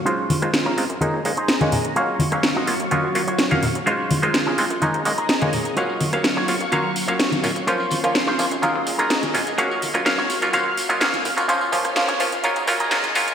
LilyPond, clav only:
\new Staff \with { instrumentName = "Clav" } { \time 4/4 \key ees \dorian \tempo 4 = 126 <aes ees' f' c''>8. <aes ees' f' c''>8. <aes c' ees' f'>16 r16 <aes bes des' ees'>8 <aes bes des' ees'>16 r8 <aes bes des' ees'>8. | <ges bes des' f''>8. <ges bes des' f''>8. <ges bes des' f'>16 r16 <ges bes des' f'>8 <ges bes des' f'>16 r8 <ges bes des' f''>8. | <aes ees' f' c''>8. <aes ees' f' c''>8. <aes c' ees' f'>16 r16 <aes bes des' ees'>8 <aes bes des' ees'>16 r8 <aes bes des' ees'>8. | <ges bes des' f''>8. <ges bes des' f''>8. <ges bes des' f'>16 r16 <ges bes des' f''>8. <ges bes des' f''>8. <ges bes des' f'>16 r16 |
<f bes des' f'>8. <f bes des' f'>8. <f bes des' f'>16 r16 <ges bes des' f'>8. <ges bes des' f'>8. <ges bes des' f'>16 r16 | <ges bes des' f''>8. <ges bes des' f'>16 <ges bes des' f''>8. <ges bes des' f'>16 <ges bes des' f''>8. <ges bes des' f'>16 <ges bes des' f''>8. <ges bes des' f'>16 | <f bes des' f'>8 <f bes des' f'>8 <f bes des' f'>8 <f bes des' f'>8 <ges bes des' f'>8 <ges bes des' f'>8 <ges bes des' f'>8 <ges bes des' f'>8 | }